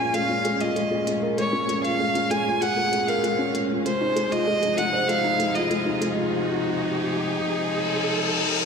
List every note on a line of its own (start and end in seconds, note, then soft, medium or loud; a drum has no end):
0.00 3.85 A#2 medium
0.00 0.14 G#3 medium
0.00 0.29 C#4 medium
0.00 3.85 C#4 medium
0.00 0.60 F4 medium
0.00 0.91 G#4 medium
0.00 1.22 A#4 loud
0.00 0.15 G#5 loud
0.00 riser medium
0.13 0.29 G#3 medium
0.13 0.62 F5 loud
0.13 closed hi-hat soft
0.29 0.44 C#4 medium
0.45 0.60 G#3 loud
0.45 closed hi-hat medium
0.60 0.75 F4 loud
0.60 1.07 D#5 medium
0.60 closed hi-hat soft
0.76 0.85 G#3 medium
0.76 closed hi-hat soft
0.91 1.00 G#4 medium
1.07 1.22 G#3 medium
1.07 closed hi-hat medium
1.13 8.65 G#4 medium
1.22 1.31 A#4 loud
1.37 1.52 G#3 medium
1.37 1.81 C#5 medium
1.37 closed hi-hat soft
1.53 1.62 C#4 loud
1.68 1.83 G#3 medium
1.68 closed hi-hat medium
1.84 1.93 F4 medium
1.84 2.32 F5 loud
1.84 closed hi-hat soft
2.00 2.14 G#3 medium
2.15 2.30 C#4 medium
2.15 closed hi-hat soft
2.31 2.45 G#3 loud
2.31 2.63 G#5 loud
2.31 closed hi-hat medium
2.46 2.61 F4 loud
2.62 2.70 G#3 medium
2.62 3.09 F#5 loud
2.62 closed hi-hat soft
2.77 2.86 G#4 medium
2.92 3.07 G#3 medium
2.92 closed hi-hat medium
3.08 3.17 A#4 loud
3.08 3.54 F5 medium
3.08 closed hi-hat soft
3.23 3.38 G#3 loud
3.23 closed hi-hat soft
3.39 3.48 C#4 medium
3.54 3.69 G#3 medium
3.54 closed hi-hat medium
3.70 3.79 F4 medium
3.85 8.65 C3 medium
3.85 4.00 G#3 medium
3.85 4.34 C5 loud
3.85 closed hi-hat soft
4.00 4.15 D#4 medium
4.16 4.31 G#3 loud
4.16 closed hi-hat medium
4.32 4.46 F4 loud
4.32 4.79 D#5 loud
4.32 closed hi-hat soft
4.47 4.56 G#3 loud
4.52 8.65 F3 medium
4.62 4.71 G#4 medium
4.62 closed hi-hat soft
4.77 4.93 G#3 medium
4.77 5.10 F#5 loud
4.77 closed hi-hat medium
4.93 5.02 C5 loud
5.08 5.23 G#3 loud
5.08 5.57 F5 loud
5.08 closed hi-hat soft
5.24 5.33 D#4 loud
5.36 5.54 G#3 medium
5.36 8.65 D#4 medium
5.40 closed hi-hat medium
5.55 5.64 F4 medium
5.55 6.02 D#5 loud
5.55 closed hi-hat soft
5.70 5.85 G#3 medium
5.70 closed hi-hat soft
5.86 6.01 D#4 medium
6.01 6.16 G#3 medium
6.01 closed hi-hat medium
6.17 6.32 F4 loud
7.56 reverse cymbal medium